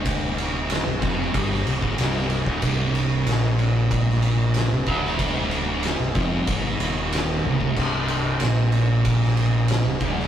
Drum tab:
CC |----------------|----------------|----------------|x---------------|
RD |x-x-x-x-x-x-x-x-|x-x-x-x-x-x-x-x-|x-x-x-x-x-x-x---|--x-x-x-x-x-x-x-|
SD |----o----o--oo--|----o----o--o--o|----o-------o---|----o----o--o--o|
T1 |----------------|----------------|--------------o-|----------------|
BD |o-----o-o--o---o|o-------o-----o-|o-----o-o------o|o-------o-----o-|